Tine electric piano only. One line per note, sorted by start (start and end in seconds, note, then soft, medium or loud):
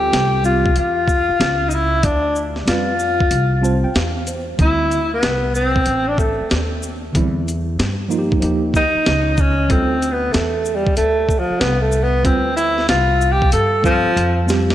0.00 0.39 G3 medium
0.00 0.39 C4 medium
0.00 0.40 F4 medium
0.00 0.41 A4 medium
0.43 0.69 G3 medium
0.43 0.69 C4 medium
0.43 0.70 F4 medium
0.43 0.71 G4 medium
2.66 2.92 G3 medium
2.66 2.92 C4 medium
2.66 2.93 F4 medium
2.66 2.94 B4 medium
3.61 3.87 G3 medium
3.61 3.88 C4 medium
3.61 3.88 F4 medium
3.61 3.89 C5 medium
3.61 3.82 A5 medium
3.84 3.94 G5 medium
3.96 4.25 F5 medium
4.28 4.57 C5 medium
4.58 4.99 D3 medium
4.58 4.99 G3 medium
4.58 5.00 C4 medium
4.58 5.00 E4 medium
7.13 7.39 D3 medium
7.13 7.39 G3 medium
7.13 7.40 C4 medium
7.13 7.40 E4 medium
8.09 8.39 F3 medium
8.09 8.40 A#3 medium
8.09 8.41 D#4 medium
8.09 8.19 F4 medium
8.19 8.43 G4 medium
8.40 8.81 F3 medium
8.40 8.82 A#3 medium
8.40 8.82 D#4 medium
8.40 8.83 G4 medium
9.69 9.94 G3 medium
9.69 9.95 C4 medium
9.69 9.95 F4 medium
9.69 9.96 A4 medium
12.23 12.49 G3 medium
12.23 12.50 C4 medium
12.23 12.50 F4 medium
12.23 12.51 B4 medium
13.82 14.09 G3 medium
13.82 14.09 C4 medium
13.82 14.10 F4 medium
13.82 14.10 A4 medium
14.47 14.73 G3 medium
14.47 14.73 C4 medium
14.47 14.74 F4 medium
14.47 14.74 G4 medium